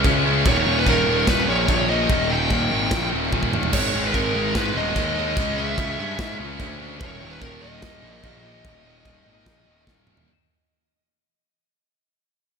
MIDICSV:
0, 0, Header, 1, 6, 480
1, 0, Start_track
1, 0, Tempo, 409277
1, 539, Time_signature, 4, 2, 24, 8
1, 14768, End_track
2, 0, Start_track
2, 0, Title_t, "Lead electric guitar"
2, 0, Program_c, 0, 29
2, 565, Note_on_c, 0, 73, 100
2, 920, Note_on_c, 0, 71, 89
2, 924, Note_off_c, 0, 73, 0
2, 1023, Note_off_c, 0, 71, 0
2, 1041, Note_on_c, 0, 70, 91
2, 1514, Note_off_c, 0, 70, 0
2, 1519, Note_on_c, 0, 71, 92
2, 1745, Note_on_c, 0, 73, 104
2, 1758, Note_off_c, 0, 71, 0
2, 2217, Note_off_c, 0, 73, 0
2, 2222, Note_on_c, 0, 75, 110
2, 2701, Note_on_c, 0, 79, 110
2, 2718, Note_off_c, 0, 75, 0
2, 3617, Note_off_c, 0, 79, 0
2, 4383, Note_on_c, 0, 73, 97
2, 4738, Note_on_c, 0, 71, 89
2, 4755, Note_off_c, 0, 73, 0
2, 4856, Note_off_c, 0, 71, 0
2, 4856, Note_on_c, 0, 70, 84
2, 5336, Note_off_c, 0, 70, 0
2, 5341, Note_on_c, 0, 71, 93
2, 5590, Note_off_c, 0, 71, 0
2, 5597, Note_on_c, 0, 75, 110
2, 6044, Note_off_c, 0, 75, 0
2, 6058, Note_on_c, 0, 75, 110
2, 6536, Note_off_c, 0, 75, 0
2, 6541, Note_on_c, 0, 76, 115
2, 7454, Note_off_c, 0, 76, 0
2, 8208, Note_on_c, 0, 73, 116
2, 8572, Note_on_c, 0, 71, 99
2, 8586, Note_off_c, 0, 73, 0
2, 8687, Note_off_c, 0, 71, 0
2, 8692, Note_on_c, 0, 70, 98
2, 8928, Note_on_c, 0, 75, 120
2, 8944, Note_off_c, 0, 70, 0
2, 11527, Note_off_c, 0, 75, 0
2, 14768, End_track
3, 0, Start_track
3, 0, Title_t, "Distorted electric guitar"
3, 0, Program_c, 1, 30
3, 58, Note_on_c, 1, 49, 91
3, 66, Note_on_c, 1, 56, 92
3, 71, Note_on_c, 1, 61, 98
3, 282, Note_off_c, 1, 49, 0
3, 287, Note_off_c, 1, 61, 0
3, 288, Note_off_c, 1, 56, 0
3, 296, Note_on_c, 1, 49, 93
3, 301, Note_on_c, 1, 61, 115
3, 302, Note_on_c, 1, 56, 90
3, 524, Note_off_c, 1, 49, 0
3, 525, Note_on_c, 1, 39, 105
3, 526, Note_off_c, 1, 61, 0
3, 527, Note_off_c, 1, 56, 0
3, 536, Note_on_c, 1, 51, 114
3, 537, Note_on_c, 1, 46, 102
3, 772, Note_off_c, 1, 46, 0
3, 782, Note_off_c, 1, 39, 0
3, 786, Note_on_c, 1, 46, 93
3, 787, Note_on_c, 1, 39, 90
3, 790, Note_off_c, 1, 51, 0
3, 795, Note_on_c, 1, 51, 99
3, 1010, Note_off_c, 1, 46, 0
3, 1013, Note_off_c, 1, 39, 0
3, 1018, Note_on_c, 1, 39, 94
3, 1025, Note_off_c, 1, 51, 0
3, 1025, Note_on_c, 1, 46, 107
3, 1030, Note_on_c, 1, 51, 96
3, 1263, Note_off_c, 1, 46, 0
3, 1268, Note_off_c, 1, 39, 0
3, 1273, Note_on_c, 1, 39, 105
3, 1275, Note_off_c, 1, 51, 0
3, 1277, Note_on_c, 1, 46, 108
3, 1280, Note_on_c, 1, 51, 105
3, 1488, Note_off_c, 1, 39, 0
3, 1494, Note_off_c, 1, 46, 0
3, 1497, Note_off_c, 1, 51, 0
3, 1502, Note_on_c, 1, 39, 79
3, 1508, Note_on_c, 1, 46, 84
3, 1511, Note_on_c, 1, 51, 104
3, 1726, Note_off_c, 1, 39, 0
3, 1735, Note_off_c, 1, 46, 0
3, 1736, Note_off_c, 1, 51, 0
3, 1740, Note_on_c, 1, 39, 94
3, 1749, Note_on_c, 1, 46, 94
3, 1750, Note_on_c, 1, 51, 109
3, 1975, Note_off_c, 1, 39, 0
3, 1982, Note_off_c, 1, 46, 0
3, 1985, Note_off_c, 1, 51, 0
3, 1989, Note_on_c, 1, 39, 94
3, 1996, Note_on_c, 1, 46, 97
3, 1999, Note_on_c, 1, 51, 98
3, 2209, Note_off_c, 1, 46, 0
3, 2214, Note_off_c, 1, 39, 0
3, 2222, Note_off_c, 1, 51, 0
3, 2223, Note_on_c, 1, 46, 98
3, 2228, Note_on_c, 1, 39, 88
3, 2236, Note_on_c, 1, 51, 104
3, 2450, Note_off_c, 1, 39, 0
3, 2454, Note_off_c, 1, 46, 0
3, 2462, Note_off_c, 1, 51, 0
3, 2464, Note_on_c, 1, 39, 114
3, 2468, Note_on_c, 1, 46, 114
3, 2476, Note_on_c, 1, 51, 122
3, 2699, Note_off_c, 1, 39, 0
3, 2701, Note_off_c, 1, 51, 0
3, 2707, Note_off_c, 1, 46, 0
3, 2713, Note_on_c, 1, 39, 83
3, 2715, Note_on_c, 1, 51, 102
3, 2721, Note_on_c, 1, 46, 97
3, 2944, Note_off_c, 1, 39, 0
3, 2945, Note_off_c, 1, 51, 0
3, 2948, Note_off_c, 1, 46, 0
3, 2958, Note_on_c, 1, 39, 88
3, 2959, Note_on_c, 1, 51, 99
3, 2962, Note_on_c, 1, 46, 105
3, 3176, Note_off_c, 1, 39, 0
3, 3182, Note_off_c, 1, 51, 0
3, 3186, Note_off_c, 1, 46, 0
3, 3190, Note_on_c, 1, 39, 82
3, 3196, Note_on_c, 1, 51, 99
3, 3200, Note_on_c, 1, 46, 102
3, 3407, Note_off_c, 1, 39, 0
3, 3409, Note_off_c, 1, 46, 0
3, 3417, Note_off_c, 1, 51, 0
3, 3421, Note_on_c, 1, 39, 88
3, 3423, Note_on_c, 1, 46, 87
3, 3431, Note_on_c, 1, 51, 102
3, 3643, Note_off_c, 1, 39, 0
3, 3653, Note_off_c, 1, 46, 0
3, 3654, Note_off_c, 1, 51, 0
3, 3657, Note_on_c, 1, 39, 93
3, 3667, Note_on_c, 1, 46, 104
3, 3668, Note_on_c, 1, 51, 94
3, 3892, Note_off_c, 1, 39, 0
3, 3899, Note_off_c, 1, 46, 0
3, 3904, Note_off_c, 1, 51, 0
3, 3906, Note_on_c, 1, 39, 90
3, 3914, Note_on_c, 1, 46, 88
3, 3918, Note_on_c, 1, 51, 96
3, 4133, Note_off_c, 1, 39, 0
3, 4139, Note_off_c, 1, 46, 0
3, 4142, Note_off_c, 1, 51, 0
3, 4147, Note_on_c, 1, 39, 81
3, 4153, Note_on_c, 1, 46, 83
3, 4156, Note_on_c, 1, 51, 104
3, 4372, Note_off_c, 1, 39, 0
3, 4375, Note_off_c, 1, 46, 0
3, 4377, Note_off_c, 1, 51, 0
3, 4391, Note_on_c, 1, 44, 104
3, 4404, Note_on_c, 1, 51, 111
3, 4406, Note_on_c, 1, 56, 107
3, 4610, Note_off_c, 1, 44, 0
3, 4611, Note_off_c, 1, 51, 0
3, 4623, Note_off_c, 1, 56, 0
3, 4624, Note_on_c, 1, 44, 83
3, 4625, Note_on_c, 1, 51, 91
3, 4628, Note_on_c, 1, 56, 105
3, 4844, Note_off_c, 1, 44, 0
3, 4850, Note_off_c, 1, 51, 0
3, 4858, Note_on_c, 1, 44, 89
3, 4864, Note_on_c, 1, 51, 98
3, 4869, Note_off_c, 1, 56, 0
3, 4874, Note_on_c, 1, 56, 102
3, 5098, Note_off_c, 1, 51, 0
3, 5099, Note_off_c, 1, 44, 0
3, 5112, Note_on_c, 1, 51, 102
3, 5113, Note_on_c, 1, 44, 94
3, 5114, Note_off_c, 1, 56, 0
3, 5119, Note_on_c, 1, 56, 103
3, 5335, Note_off_c, 1, 44, 0
3, 5345, Note_off_c, 1, 51, 0
3, 5345, Note_off_c, 1, 56, 0
3, 5349, Note_on_c, 1, 44, 88
3, 5359, Note_on_c, 1, 51, 86
3, 5359, Note_on_c, 1, 56, 96
3, 5582, Note_off_c, 1, 44, 0
3, 5586, Note_off_c, 1, 51, 0
3, 5596, Note_off_c, 1, 56, 0
3, 5596, Note_on_c, 1, 44, 91
3, 5600, Note_on_c, 1, 51, 110
3, 5610, Note_on_c, 1, 56, 120
3, 5836, Note_off_c, 1, 44, 0
3, 5837, Note_off_c, 1, 51, 0
3, 5838, Note_off_c, 1, 56, 0
3, 5850, Note_on_c, 1, 44, 88
3, 5852, Note_on_c, 1, 51, 95
3, 5852, Note_on_c, 1, 56, 99
3, 6065, Note_off_c, 1, 44, 0
3, 6076, Note_off_c, 1, 51, 0
3, 6079, Note_on_c, 1, 44, 104
3, 6080, Note_off_c, 1, 56, 0
3, 6090, Note_on_c, 1, 51, 97
3, 6094, Note_on_c, 1, 56, 103
3, 6297, Note_off_c, 1, 44, 0
3, 6303, Note_off_c, 1, 51, 0
3, 6305, Note_off_c, 1, 56, 0
3, 6322, Note_on_c, 1, 49, 116
3, 6328, Note_on_c, 1, 56, 110
3, 6333, Note_on_c, 1, 61, 115
3, 6548, Note_off_c, 1, 49, 0
3, 6549, Note_off_c, 1, 56, 0
3, 6554, Note_off_c, 1, 61, 0
3, 6562, Note_on_c, 1, 49, 93
3, 6563, Note_on_c, 1, 56, 104
3, 6568, Note_on_c, 1, 61, 107
3, 6781, Note_off_c, 1, 49, 0
3, 6787, Note_off_c, 1, 56, 0
3, 6787, Note_off_c, 1, 61, 0
3, 6795, Note_on_c, 1, 49, 89
3, 6801, Note_on_c, 1, 56, 92
3, 6802, Note_on_c, 1, 61, 104
3, 7019, Note_off_c, 1, 49, 0
3, 7019, Note_off_c, 1, 61, 0
3, 7024, Note_off_c, 1, 56, 0
3, 7033, Note_on_c, 1, 61, 111
3, 7034, Note_on_c, 1, 49, 86
3, 7038, Note_on_c, 1, 56, 92
3, 7251, Note_off_c, 1, 49, 0
3, 7257, Note_off_c, 1, 56, 0
3, 7265, Note_off_c, 1, 61, 0
3, 7265, Note_on_c, 1, 49, 77
3, 7271, Note_on_c, 1, 56, 84
3, 7280, Note_on_c, 1, 61, 95
3, 7483, Note_off_c, 1, 56, 0
3, 7484, Note_off_c, 1, 49, 0
3, 7493, Note_off_c, 1, 61, 0
3, 7497, Note_on_c, 1, 56, 124
3, 7498, Note_on_c, 1, 49, 94
3, 7507, Note_on_c, 1, 61, 127
3, 7731, Note_off_c, 1, 49, 0
3, 7736, Note_off_c, 1, 56, 0
3, 7743, Note_off_c, 1, 61, 0
3, 7745, Note_on_c, 1, 49, 89
3, 7750, Note_on_c, 1, 56, 97
3, 7757, Note_on_c, 1, 61, 101
3, 7953, Note_off_c, 1, 49, 0
3, 7962, Note_off_c, 1, 56, 0
3, 7967, Note_off_c, 1, 61, 0
3, 7967, Note_on_c, 1, 49, 101
3, 7976, Note_on_c, 1, 56, 91
3, 7981, Note_on_c, 1, 61, 100
3, 8200, Note_off_c, 1, 49, 0
3, 8204, Note_off_c, 1, 56, 0
3, 8207, Note_off_c, 1, 61, 0
3, 8223, Note_on_c, 1, 39, 99
3, 8226, Note_on_c, 1, 46, 116
3, 8231, Note_on_c, 1, 51, 105
3, 8448, Note_off_c, 1, 39, 0
3, 8448, Note_off_c, 1, 46, 0
3, 8453, Note_on_c, 1, 39, 86
3, 8460, Note_off_c, 1, 51, 0
3, 8462, Note_on_c, 1, 46, 86
3, 8464, Note_on_c, 1, 51, 100
3, 8678, Note_off_c, 1, 39, 0
3, 8682, Note_off_c, 1, 46, 0
3, 8682, Note_on_c, 1, 39, 91
3, 8694, Note_off_c, 1, 51, 0
3, 8696, Note_on_c, 1, 46, 96
3, 8699, Note_on_c, 1, 51, 106
3, 8916, Note_off_c, 1, 46, 0
3, 8926, Note_off_c, 1, 39, 0
3, 8927, Note_off_c, 1, 51, 0
3, 8930, Note_on_c, 1, 46, 101
3, 8931, Note_on_c, 1, 39, 100
3, 8931, Note_on_c, 1, 51, 106
3, 9156, Note_off_c, 1, 46, 0
3, 9165, Note_off_c, 1, 39, 0
3, 9170, Note_on_c, 1, 39, 90
3, 9170, Note_on_c, 1, 46, 94
3, 9174, Note_off_c, 1, 51, 0
3, 9178, Note_on_c, 1, 51, 93
3, 9403, Note_off_c, 1, 39, 0
3, 9403, Note_off_c, 1, 46, 0
3, 9408, Note_on_c, 1, 39, 111
3, 9417, Note_on_c, 1, 46, 105
3, 9423, Note_off_c, 1, 51, 0
3, 9427, Note_on_c, 1, 51, 104
3, 9653, Note_off_c, 1, 46, 0
3, 9662, Note_off_c, 1, 39, 0
3, 9667, Note_off_c, 1, 51, 0
3, 9667, Note_on_c, 1, 39, 88
3, 9667, Note_on_c, 1, 46, 87
3, 9672, Note_on_c, 1, 51, 101
3, 9882, Note_off_c, 1, 46, 0
3, 9890, Note_off_c, 1, 39, 0
3, 9895, Note_on_c, 1, 39, 88
3, 9897, Note_on_c, 1, 46, 92
3, 9901, Note_off_c, 1, 51, 0
3, 9906, Note_on_c, 1, 51, 92
3, 10122, Note_off_c, 1, 39, 0
3, 10130, Note_off_c, 1, 46, 0
3, 10132, Note_off_c, 1, 51, 0
3, 10136, Note_on_c, 1, 39, 88
3, 10144, Note_on_c, 1, 46, 125
3, 10146, Note_on_c, 1, 51, 111
3, 10370, Note_off_c, 1, 39, 0
3, 10370, Note_off_c, 1, 46, 0
3, 10376, Note_off_c, 1, 51, 0
3, 10384, Note_on_c, 1, 39, 93
3, 10384, Note_on_c, 1, 46, 91
3, 10390, Note_on_c, 1, 51, 93
3, 10613, Note_off_c, 1, 39, 0
3, 10620, Note_off_c, 1, 46, 0
3, 10622, Note_off_c, 1, 51, 0
3, 10627, Note_on_c, 1, 39, 93
3, 10634, Note_on_c, 1, 46, 105
3, 10636, Note_on_c, 1, 51, 102
3, 10842, Note_off_c, 1, 39, 0
3, 10848, Note_off_c, 1, 46, 0
3, 10856, Note_on_c, 1, 39, 99
3, 10860, Note_off_c, 1, 51, 0
3, 10862, Note_on_c, 1, 46, 88
3, 10874, Note_on_c, 1, 51, 96
3, 11102, Note_off_c, 1, 39, 0
3, 11104, Note_off_c, 1, 46, 0
3, 11107, Note_off_c, 1, 51, 0
3, 11116, Note_on_c, 1, 39, 88
3, 11118, Note_on_c, 1, 46, 95
3, 11121, Note_on_c, 1, 51, 102
3, 11317, Note_off_c, 1, 39, 0
3, 11319, Note_off_c, 1, 51, 0
3, 11321, Note_off_c, 1, 46, 0
3, 11331, Note_on_c, 1, 39, 110
3, 11333, Note_on_c, 1, 51, 105
3, 11335, Note_on_c, 1, 46, 94
3, 11573, Note_off_c, 1, 39, 0
3, 11576, Note_off_c, 1, 46, 0
3, 11576, Note_off_c, 1, 51, 0
3, 11587, Note_on_c, 1, 39, 84
3, 11590, Note_on_c, 1, 46, 99
3, 11591, Note_on_c, 1, 51, 97
3, 11814, Note_off_c, 1, 39, 0
3, 11818, Note_off_c, 1, 46, 0
3, 11825, Note_off_c, 1, 51, 0
3, 11828, Note_on_c, 1, 39, 87
3, 11832, Note_on_c, 1, 46, 94
3, 11839, Note_on_c, 1, 51, 108
3, 12050, Note_off_c, 1, 39, 0
3, 12052, Note_off_c, 1, 46, 0
3, 12055, Note_off_c, 1, 51, 0
3, 14768, End_track
4, 0, Start_track
4, 0, Title_t, "Distorted electric guitar"
4, 0, Program_c, 2, 30
4, 5800, Note_on_c, 2, 44, 95
4, 6036, Note_off_c, 2, 44, 0
4, 14768, End_track
5, 0, Start_track
5, 0, Title_t, "Picked electric bass"
5, 0, Program_c, 3, 34
5, 53, Note_on_c, 3, 37, 95
5, 490, Note_off_c, 3, 37, 0
5, 529, Note_on_c, 3, 27, 97
5, 751, Note_off_c, 3, 27, 0
5, 781, Note_on_c, 3, 27, 92
5, 998, Note_off_c, 3, 27, 0
5, 1010, Note_on_c, 3, 27, 110
5, 1232, Note_off_c, 3, 27, 0
5, 1254, Note_on_c, 3, 27, 93
5, 1474, Note_off_c, 3, 27, 0
5, 1500, Note_on_c, 3, 27, 100
5, 1718, Note_off_c, 3, 27, 0
5, 1737, Note_on_c, 3, 34, 88
5, 1956, Note_off_c, 3, 34, 0
5, 1974, Note_on_c, 3, 34, 97
5, 2412, Note_off_c, 3, 34, 0
5, 2466, Note_on_c, 3, 27, 95
5, 2899, Note_off_c, 3, 27, 0
5, 2937, Note_on_c, 3, 27, 93
5, 3157, Note_off_c, 3, 27, 0
5, 3189, Note_on_c, 3, 32, 95
5, 3404, Note_off_c, 3, 32, 0
5, 3418, Note_on_c, 3, 34, 102
5, 3638, Note_off_c, 3, 34, 0
5, 3679, Note_on_c, 3, 27, 96
5, 3890, Note_off_c, 3, 27, 0
5, 3900, Note_on_c, 3, 27, 81
5, 4336, Note_off_c, 3, 27, 0
5, 4380, Note_on_c, 3, 32, 99
5, 4599, Note_off_c, 3, 32, 0
5, 4622, Note_on_c, 3, 32, 96
5, 4840, Note_off_c, 3, 32, 0
5, 4861, Note_on_c, 3, 32, 99
5, 5079, Note_off_c, 3, 32, 0
5, 5101, Note_on_c, 3, 32, 85
5, 5320, Note_off_c, 3, 32, 0
5, 5338, Note_on_c, 3, 32, 103
5, 5557, Note_off_c, 3, 32, 0
5, 5568, Note_on_c, 3, 27, 93
5, 5792, Note_off_c, 3, 27, 0
5, 5810, Note_on_c, 3, 39, 90
5, 6250, Note_off_c, 3, 39, 0
5, 6295, Note_on_c, 3, 37, 96
5, 6732, Note_off_c, 3, 37, 0
5, 6776, Note_on_c, 3, 37, 94
5, 6996, Note_off_c, 3, 37, 0
5, 7020, Note_on_c, 3, 43, 88
5, 7238, Note_off_c, 3, 43, 0
5, 7258, Note_on_c, 3, 44, 96
5, 7476, Note_off_c, 3, 44, 0
5, 7499, Note_on_c, 3, 37, 106
5, 7717, Note_off_c, 3, 37, 0
5, 7741, Note_on_c, 3, 38, 96
5, 8174, Note_off_c, 3, 38, 0
5, 8217, Note_on_c, 3, 27, 98
5, 8436, Note_off_c, 3, 27, 0
5, 8479, Note_on_c, 3, 27, 95
5, 8687, Note_off_c, 3, 27, 0
5, 8700, Note_on_c, 3, 27, 104
5, 8917, Note_off_c, 3, 27, 0
5, 8951, Note_on_c, 3, 27, 84
5, 9163, Note_off_c, 3, 27, 0
5, 9179, Note_on_c, 3, 27, 105
5, 9396, Note_off_c, 3, 27, 0
5, 9411, Note_on_c, 3, 34, 96
5, 9632, Note_off_c, 3, 34, 0
5, 9658, Note_on_c, 3, 34, 102
5, 10092, Note_off_c, 3, 34, 0
5, 10145, Note_on_c, 3, 27, 97
5, 10576, Note_off_c, 3, 27, 0
5, 10613, Note_on_c, 3, 27, 105
5, 10833, Note_off_c, 3, 27, 0
5, 10864, Note_on_c, 3, 32, 93
5, 11078, Note_off_c, 3, 32, 0
5, 11099, Note_on_c, 3, 34, 96
5, 11316, Note_off_c, 3, 34, 0
5, 11342, Note_on_c, 3, 27, 96
5, 11558, Note_off_c, 3, 27, 0
5, 11575, Note_on_c, 3, 27, 89
5, 12011, Note_off_c, 3, 27, 0
5, 14768, End_track
6, 0, Start_track
6, 0, Title_t, "Drums"
6, 52, Note_on_c, 9, 36, 101
6, 59, Note_on_c, 9, 52, 67
6, 169, Note_off_c, 9, 36, 0
6, 176, Note_off_c, 9, 52, 0
6, 536, Note_on_c, 9, 36, 127
6, 539, Note_on_c, 9, 52, 71
6, 653, Note_off_c, 9, 36, 0
6, 657, Note_off_c, 9, 52, 0
6, 1015, Note_on_c, 9, 36, 87
6, 1019, Note_on_c, 9, 52, 74
6, 1132, Note_off_c, 9, 36, 0
6, 1137, Note_off_c, 9, 52, 0
6, 1494, Note_on_c, 9, 38, 110
6, 1494, Note_on_c, 9, 52, 75
6, 1495, Note_on_c, 9, 36, 115
6, 1611, Note_off_c, 9, 38, 0
6, 1611, Note_off_c, 9, 52, 0
6, 1612, Note_off_c, 9, 36, 0
6, 1976, Note_on_c, 9, 36, 97
6, 1976, Note_on_c, 9, 52, 73
6, 2093, Note_off_c, 9, 36, 0
6, 2093, Note_off_c, 9, 52, 0
6, 2458, Note_on_c, 9, 36, 120
6, 2461, Note_on_c, 9, 52, 69
6, 2575, Note_off_c, 9, 36, 0
6, 2578, Note_off_c, 9, 52, 0
6, 2938, Note_on_c, 9, 36, 89
6, 2938, Note_on_c, 9, 52, 67
6, 3055, Note_off_c, 9, 36, 0
6, 3055, Note_off_c, 9, 52, 0
6, 3415, Note_on_c, 9, 38, 117
6, 3415, Note_on_c, 9, 52, 65
6, 3418, Note_on_c, 9, 36, 123
6, 3532, Note_off_c, 9, 38, 0
6, 3532, Note_off_c, 9, 52, 0
6, 3535, Note_off_c, 9, 36, 0
6, 3900, Note_on_c, 9, 36, 97
6, 3904, Note_on_c, 9, 48, 67
6, 4017, Note_off_c, 9, 36, 0
6, 4019, Note_on_c, 9, 36, 85
6, 4021, Note_off_c, 9, 48, 0
6, 4136, Note_off_c, 9, 36, 0
6, 4145, Note_on_c, 9, 45, 101
6, 4257, Note_on_c, 9, 43, 95
6, 4262, Note_off_c, 9, 45, 0
6, 4373, Note_on_c, 9, 49, 127
6, 4373, Note_on_c, 9, 52, 69
6, 4375, Note_off_c, 9, 43, 0
6, 4378, Note_on_c, 9, 36, 121
6, 4491, Note_off_c, 9, 49, 0
6, 4491, Note_off_c, 9, 52, 0
6, 4496, Note_off_c, 9, 36, 0
6, 4858, Note_on_c, 9, 36, 83
6, 4862, Note_on_c, 9, 52, 66
6, 4975, Note_off_c, 9, 36, 0
6, 4979, Note_off_c, 9, 52, 0
6, 5338, Note_on_c, 9, 36, 119
6, 5338, Note_on_c, 9, 38, 120
6, 5338, Note_on_c, 9, 52, 74
6, 5455, Note_off_c, 9, 38, 0
6, 5455, Note_off_c, 9, 52, 0
6, 5456, Note_off_c, 9, 36, 0
6, 5814, Note_on_c, 9, 52, 73
6, 5817, Note_on_c, 9, 36, 87
6, 5931, Note_off_c, 9, 52, 0
6, 5934, Note_off_c, 9, 36, 0
6, 6295, Note_on_c, 9, 52, 82
6, 6296, Note_on_c, 9, 36, 125
6, 6412, Note_off_c, 9, 52, 0
6, 6413, Note_off_c, 9, 36, 0
6, 6777, Note_on_c, 9, 36, 93
6, 6785, Note_on_c, 9, 52, 70
6, 6895, Note_off_c, 9, 36, 0
6, 6902, Note_off_c, 9, 52, 0
6, 7258, Note_on_c, 9, 36, 127
6, 7259, Note_on_c, 9, 38, 121
6, 7259, Note_on_c, 9, 52, 63
6, 7375, Note_off_c, 9, 36, 0
6, 7376, Note_off_c, 9, 38, 0
6, 7376, Note_off_c, 9, 52, 0
6, 7737, Note_on_c, 9, 36, 89
6, 7741, Note_on_c, 9, 52, 64
6, 7854, Note_off_c, 9, 36, 0
6, 7858, Note_off_c, 9, 52, 0
6, 8219, Note_on_c, 9, 36, 126
6, 8219, Note_on_c, 9, 52, 65
6, 8336, Note_off_c, 9, 36, 0
6, 8336, Note_off_c, 9, 52, 0
6, 8693, Note_on_c, 9, 52, 66
6, 8698, Note_on_c, 9, 36, 93
6, 8811, Note_off_c, 9, 52, 0
6, 8815, Note_off_c, 9, 36, 0
6, 9175, Note_on_c, 9, 38, 113
6, 9175, Note_on_c, 9, 52, 76
6, 9180, Note_on_c, 9, 36, 110
6, 9293, Note_off_c, 9, 38, 0
6, 9293, Note_off_c, 9, 52, 0
6, 9297, Note_off_c, 9, 36, 0
6, 9658, Note_on_c, 9, 52, 71
6, 9660, Note_on_c, 9, 36, 88
6, 9776, Note_off_c, 9, 52, 0
6, 9777, Note_off_c, 9, 36, 0
6, 10141, Note_on_c, 9, 36, 127
6, 10141, Note_on_c, 9, 52, 73
6, 10258, Note_off_c, 9, 36, 0
6, 10258, Note_off_c, 9, 52, 0
6, 10619, Note_on_c, 9, 36, 101
6, 10619, Note_on_c, 9, 52, 66
6, 10736, Note_off_c, 9, 36, 0
6, 10737, Note_off_c, 9, 52, 0
6, 11099, Note_on_c, 9, 36, 120
6, 11102, Note_on_c, 9, 38, 127
6, 11102, Note_on_c, 9, 52, 69
6, 11216, Note_off_c, 9, 36, 0
6, 11219, Note_off_c, 9, 38, 0
6, 11219, Note_off_c, 9, 52, 0
6, 11577, Note_on_c, 9, 36, 97
6, 11582, Note_on_c, 9, 38, 70
6, 11695, Note_off_c, 9, 36, 0
6, 11699, Note_off_c, 9, 38, 0
6, 11809, Note_on_c, 9, 45, 101
6, 11926, Note_off_c, 9, 45, 0
6, 11929, Note_on_c, 9, 43, 103
6, 12047, Note_off_c, 9, 43, 0
6, 14768, End_track
0, 0, End_of_file